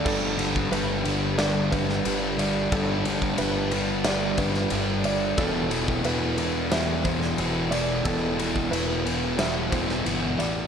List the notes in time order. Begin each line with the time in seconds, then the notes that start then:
Already playing: D4
0.04 G1 G2 D3 G3 D4 G4 A4 D5, kick, crash
0.38 G2 D3 G3, ride
0.56 kick
0.71 G1 G2 D3 G3 B4, ride
1.04 G2 D3 G3, ride
1.37 G2 D3 G3 D5, snare, ride
1.71 G2 D3 G3 B4, kick, ride
1.89 snare
2.05 G1 G2 D3 G3, ride
2.37 G2 D3 G3 D5, ride
2.71 G1 G2 D3 G3 F4 A4, kick, ride
3.04 G2 D3 G3, ride
3.22 kick
3.38 G1 G2 D3 G3 B4, ride
3.71 G2 D3 G3, ride
4.05 G2 D3 G3 D5, snare, ride
4.37 G2 D3 G3 B4, kick, ride
4.54 snare
4.70 G1 G2 D3 G3, ride
5.04 G2 D3 G3 D5, ride
5.37 E1 E2 B2 E3 E4 A4, kick, ride
5.71 E2 B2 E3, ride
5.88 kick
6.03 E1 E2 B2 E3 B4, ride
6.37 E2 B2 E3, ride
6.70 E2 B2 E3 E5, snare, ride
7.04 E2 B2 E3 C5, kick, ride
7.22 snare
7.37 E1 E2 B2 E3, ride
7.70 E2 B2 E3 D5, ride
8.04 E1 E2 B2 E3 A4, kick, ride
8.38 E2 B2 E3, ride
8.56 kick
8.70 E1 E2 B2 E3 B4, ride
9.04 E2 B2 E3, ride
9.38 E2 B2 E3 E5, snare, ride
9.71 E1 E2 B2 E3 C5, kick, ride
9.89 snare
10.05 G1 E2 B2 E3, ride
10.38 A1 E2 B2 E3 D5, ride